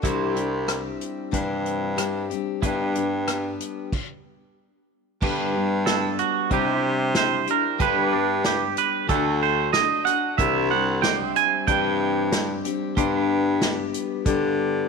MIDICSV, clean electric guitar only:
0, 0, Header, 1, 2, 480
1, 0, Start_track
1, 0, Key_signature, 1, "major"
1, 0, Tempo, 646552
1, 22, Time_signature, 4, 2, 24, 8
1, 11051, End_track
2, 0, Start_track
2, 0, Title_t, "Clean electric guitar"
2, 0, Program_c, 0, 27
2, 4351, Note_on_c, 0, 69, 74
2, 4583, Note_off_c, 0, 69, 0
2, 4596, Note_on_c, 0, 66, 81
2, 4826, Note_off_c, 0, 66, 0
2, 4851, Note_on_c, 0, 67, 72
2, 5291, Note_off_c, 0, 67, 0
2, 5324, Note_on_c, 0, 72, 95
2, 5550, Note_off_c, 0, 72, 0
2, 5573, Note_on_c, 0, 70, 82
2, 5795, Note_off_c, 0, 70, 0
2, 5806, Note_on_c, 0, 71, 96
2, 6031, Note_off_c, 0, 71, 0
2, 6035, Note_on_c, 0, 62, 57
2, 6265, Note_off_c, 0, 62, 0
2, 6279, Note_on_c, 0, 67, 79
2, 6507, Note_off_c, 0, 67, 0
2, 6520, Note_on_c, 0, 71, 84
2, 6747, Note_off_c, 0, 71, 0
2, 6750, Note_on_c, 0, 69, 72
2, 6982, Note_off_c, 0, 69, 0
2, 6998, Note_on_c, 0, 72, 93
2, 7220, Note_off_c, 0, 72, 0
2, 7223, Note_on_c, 0, 75, 87
2, 7458, Note_off_c, 0, 75, 0
2, 7461, Note_on_c, 0, 78, 118
2, 7697, Note_off_c, 0, 78, 0
2, 7706, Note_on_c, 0, 76, 84
2, 7939, Note_off_c, 0, 76, 0
2, 7950, Note_on_c, 0, 78, 84
2, 8179, Note_off_c, 0, 78, 0
2, 8182, Note_on_c, 0, 79, 86
2, 8417, Note_off_c, 0, 79, 0
2, 8436, Note_on_c, 0, 80, 122
2, 8664, Note_off_c, 0, 80, 0
2, 8667, Note_on_c, 0, 79, 90
2, 9595, Note_off_c, 0, 79, 0
2, 11051, End_track
0, 0, End_of_file